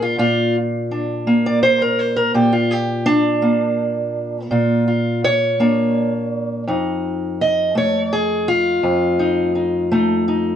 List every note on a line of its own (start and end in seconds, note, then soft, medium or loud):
0.00 0.18 A#2 medium
0.00 1.26 A#3 medium
0.00 0.90 D4 soft
0.00 0.18 F4 medium
0.18 2.33 A#2 medium
0.18 0.55 F4 loud
0.91 2.31 D4 soft
1.27 2.31 A#3 medium
1.46 1.62 D5 medium
1.63 1.81 C5 loud
1.82 2.00 A#4 medium
1.99 2.17 C5 medium
2.16 2.35 A#4 loud
2.34 4.49 A#2 medium
2.34 2.53 G4 medium
2.52 2.71 F4 medium
2.71 3.07 G4 medium
3.06 4.50 D4 loud
3.42 5.58 A#3 medium
4.51 6.67 A#2 medium
4.51 4.86 F4 soft
4.88 5.23 F4 soft
5.24 6.68 C#5 loud
5.60 6.63 A#3 medium
5.60 6.63 D4 medium
6.67 8.82 F2 medium
6.67 9.18 D#4 soft
7.41 7.76 D#5 loud
7.75 9.90 A3 medium
7.75 8.12 C#5 loud
8.13 8.48 G#4 medium
8.48 10.56 F4 medium
8.83 10.56 F2 medium
9.19 9.54 D#4 soft
9.55 9.91 D#4 soft
9.92 10.56 A3 medium
9.92 10.27 D#4 medium
10.28 10.56 D#4 soft